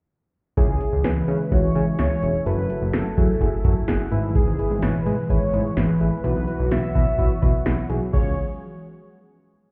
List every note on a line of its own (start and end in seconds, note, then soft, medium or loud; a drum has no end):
0.57 0.68 C#2 loud
0.57 4.08 C#3 medium
0.57 2.44 E3 medium
0.57 2.44 G#3 medium
0.57 0.71 C#4 medium
0.57 6.20 E4 medium
0.57 0.71 E4 medium
0.57 1.06 G#4 medium
0.57 0.71 G#4 loud
0.57 kick loud
0.57 closed hi-hat medium
0.69 0.79 C#2 medium
0.81 0.95 C#4 medium
0.81 0.95 E4 medium
0.81 0.95 G#4 medium
0.81 closed hi-hat medium
0.93 1.03 C#2 loud
1.04 1.15 C#2 medium
1.04 1.18 C#4 medium
1.04 1.18 E4 medium
1.04 1.18 G#4 medium
1.04 1.53 B4 loud
1.04 snare loud
1.04 closed hi-hat medium
1.28 1.38 C#3 medium
1.28 1.42 C#4 medium
1.28 1.42 E4 medium
1.28 1.42 G#4 medium
1.28 closed hi-hat medium
1.51 1.62 C#2 loud
1.51 1.66 C#4 medium
1.51 1.66 E4 medium
1.51 1.66 F#4 loud
1.51 1.98 C#5 loud
1.51 kick medium
1.51 closed hi-hat medium
1.75 1.86 C#3 loud
1.75 1.89 C#4 medium
1.75 1.89 E4 medium
1.75 1.89 G#4 medium
1.75 closed hi-hat medium
1.98 2.09 C#2 loud
1.98 2.13 C#4 medium
1.98 2.13 E4 medium
1.98 2.13 G#4 medium
1.98 2.43 C#5 loud
1.98 snare loud
1.98 closed hi-hat medium
2.22 2.33 E1 medium
2.22 2.36 C#4 medium
2.22 2.36 E4 medium
2.22 2.36 G#4 medium
2.22 closed hi-hat medium
2.46 2.57 F#1 loud
2.46 4.10 F#3 medium
2.46 4.10 A3 medium
2.46 2.60 E4 medium
2.46 2.60 F#4 medium
2.46 2.60 A4 loud
2.46 2.95 B4 loud
2.46 closed hi-hat medium
2.58 2.68 F#1 medium
2.70 2.84 E4 medium
2.70 2.84 F#4 medium
2.70 2.84 A4 medium
2.70 closed hi-hat medium
2.82 2.92 F#1 loud
2.93 3.04 F#1 loud
2.93 3.07 E4 medium
2.93 3.07 F#4 medium
2.93 3.88 A4 medium
2.93 3.07 A4 medium
2.93 snare loud
2.93 closed hi-hat medium
3.17 3.28 F#2 loud
3.17 3.31 E4 medium
3.17 3.31 F#4 medium
3.17 3.31 G#4 medium
3.17 kick medium
3.17 closed hi-hat medium
3.41 3.51 F#1 loud
3.41 3.55 E4 medium
3.41 3.55 F#4 medium
3.41 3.55 G#4 loud
3.41 kick medium
3.41 closed hi-hat medium
3.64 3.75 F#2 loud
3.64 3.78 E4 medium
3.64 3.78 F#4 medium
3.64 3.78 A4 medium
3.64 kick medium
3.64 closed hi-hat medium
3.88 3.98 F#1 loud
3.88 4.02 E4 medium
3.88 4.02 F#4 medium
3.88 4.02 G#4 loud
3.88 4.10 F#5 medium
3.88 snare loud
3.88 closed hi-hat medium
4.12 4.43 G#1 loud
4.12 6.22 B2 medium
4.12 8.09 E3 medium
4.12 6.22 G#3 medium
4.12 4.49 E4 medium
4.12 4.49 G#4 medium
4.12 4.49 B4 loud
4.12 4.34 E5 medium
4.12 closed hi-hat medium
4.35 4.84 G#4 medium
4.35 kick loud
4.35 closed hi-hat medium
4.47 4.58 G#1 loud
4.59 4.73 E4 medium
4.59 4.73 G#4 medium
4.59 4.73 B4 medium
4.59 closed hi-hat medium
4.71 4.81 G#1 medium
4.82 4.93 G#1 loud
4.82 4.96 E4 medium
4.82 4.96 G#4 medium
4.82 5.31 B4 medium
4.82 4.96 C#5 medium
4.82 snare loud
4.82 closed hi-hat medium
5.06 5.17 G#2 loud
5.06 5.20 E4 medium
5.06 5.20 G#4 medium
5.06 5.20 B4 medium
5.06 closed hi-hat medium
5.29 5.40 G#1 loud
5.29 5.44 E4 medium
5.29 5.44 G#4 medium
5.29 5.44 B4 loud
5.29 5.78 C#5 loud
5.29 kick medium
5.29 closed hi-hat medium
5.53 5.64 G#2 medium
5.53 5.67 E4 medium
5.53 5.67 G#4 medium
5.53 5.67 B4 medium
5.53 closed hi-hat medium
5.77 5.87 G#1 loud
5.77 5.91 E4 medium
5.77 5.91 G#4 medium
5.77 6.24 B4 medium
5.77 5.91 B4 medium
5.77 snare loud
5.77 closed hi-hat medium
6.00 6.11 A1 medium
6.00 6.14 E4 medium
6.00 6.14 G#4 medium
6.00 6.14 B4 medium
6.00 closed hi-hat medium
6.24 6.34 B1 loud
6.24 8.12 F#3 medium
6.24 8.11 B3 medium
6.24 6.38 E4 medium
6.24 6.38 F#4 medium
6.24 8.11 F#4 medium
6.24 6.38 B4 loud
6.24 6.68 B4 loud
6.24 closed hi-hat medium
6.36 6.46 B1 loud
6.48 6.61 E4 medium
6.48 6.61 F#4 medium
6.48 6.61 B4 medium
6.48 closed hi-hat medium
6.59 6.70 B1 medium
6.71 6.82 B1 loud
6.71 6.85 E4 medium
6.71 6.85 F#4 medium
6.71 6.85 B4 medium
6.71 7.62 E5 loud
6.71 snare loud
6.71 closed hi-hat medium
6.95 7.06 B2 medium
6.95 7.09 E4 medium
6.95 7.09 F#4 medium
6.95 7.09 B4 medium
6.95 kick medium
6.95 closed hi-hat medium
7.18 7.29 B1 loud
7.18 7.32 E4 medium
7.18 7.32 F#4 medium
7.18 7.32 B4 loud
7.18 kick medium
7.18 closed hi-hat medium
7.42 7.53 B2 loud
7.42 7.56 E4 medium
7.42 7.56 F#4 medium
7.42 7.56 B4 loud
7.42 kick medium
7.42 closed hi-hat medium
7.66 7.76 B1 loud
7.66 7.80 E4 medium
7.66 7.80 F#4 medium
7.66 7.80 B4 medium
7.66 snare loud
7.66 closed hi-hat medium
7.90 8.00 B1 medium
7.90 8.03 E4 medium
7.90 8.03 F#4 medium
7.90 8.03 G#4 medium
7.90 closed hi-hat medium
8.13 8.35 C#2 loud
8.13 8.35 F3 medium
8.13 8.35 G#3 medium
8.13 8.35 C#4 medium
8.13 8.35 F4 medium
8.13 8.35 G#4 medium
8.13 8.35 C#5 medium
8.13 kick loud
8.13 crash medium